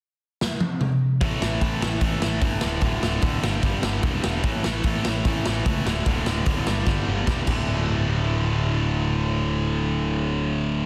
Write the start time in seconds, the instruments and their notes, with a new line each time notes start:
0.41 snare
0.60 high tom
0.81 mid tom
1.21 picked electric bass A1, overdriven electric guitar A2 E3 A3, kick, open hi-hat
1.42 picked electric bass A1, overdriven electric guitar A2 E3 A3, snare
1.61 picked electric bass A1, overdriven electric guitar A2 E3 A3, kick, open hi-hat
1.82 picked electric bass A1, overdriven electric guitar A2 E3 A3, snare
2.01 picked electric bass A1, overdriven electric guitar A2 E3 A3, kick, open hi-hat
2.21 picked electric bass A1, overdriven electric guitar A2 E3 A3, snare
2.42 picked electric bass G1, overdriven electric guitar A2 E3 A3, kick, open hi-hat
2.61 picked electric bass D1, overdriven electric guitar D2 A2 D3, snare
2.81 picked electric bass D1, overdriven electric guitar D2 A2 D3, kick, open hi-hat
3.02 picked electric bass D1, overdriven electric guitar D2 A2 D3, snare
3.22 picked electric bass D1, overdriven electric guitar D2 A2 D3, kick, open hi-hat
3.42 picked electric bass G1, overdriven electric guitar G2 D3 G3, snare
3.63 picked electric bass G1, overdriven electric guitar G2 D3 G3, kick, open hi-hat
3.83 picked electric bass G1, overdriven electric guitar G2 D3 G3, snare
4.03 picked electric bass E1, overdriven electric guitar G2 D3 G3, kick, open hi-hat
4.23 picked electric bass E1, overdriven electric guitar G2 D3 G3, snare
4.43 picked electric bass A1, overdriven electric guitar A2 E3 A3, kick, open hi-hat
4.63 picked electric bass A1, overdriven electric guitar A2 E3 A3, snare
4.83 picked electric bass A1, overdriven electric guitar A2 E3 A3, kick, open hi-hat
5.05 picked electric bass A1, overdriven electric guitar A2 E3 A3, snare
5.25 picked electric bass A1, overdriven electric guitar A2 E3 A3, kick, open hi-hat
5.46 picked electric bass A1, overdriven electric guitar A2 E3 A3, snare
5.66 picked electric bass C#2, overdriven electric guitar A2 E3 A3, kick, open hi-hat
5.86 picked electric bass D1, overdriven electric guitar D2 A2 D3, snare
6.06 picked electric bass D1, overdriven electric guitar D2 A2 D3, kick, open hi-hat
6.26 picked electric bass D1, overdriven electric guitar D2 A2 D3, snare
6.46 picked electric bass D1, overdriven electric guitar D2 A2 D3, kick, open hi-hat
6.67 picked electric bass G1, overdriven electric guitar G2 D3 G3, snare
6.86 picked electric bass G1, overdriven electric guitar G2 D3 G3, kick, snare
7.07 picked electric bass G1, overdriven electric guitar G2 D3 G3
7.27 picked electric bass E1, overdriven electric guitar G2 D3 G3, kick, snare
7.47 picked electric bass D1, overdriven electric guitar D2 A2 D3 A3, kick, crash
7.52 overdriven electric guitar F#4